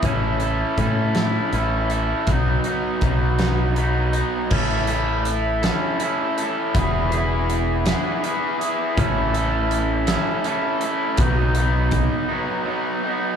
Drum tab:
CC |------|------|x-----|------|
HH |xxxxxx|xxxxxx|-xxxxx|xxxxxx|
SD |---o--|---o--|---o--|---o--|
BD |o-o---|o-o---|o-----|o-----|

CC |------|------|
HH |xxxxxx|xxx---|
SD |---o--|------|
BD |o-----|o-o---|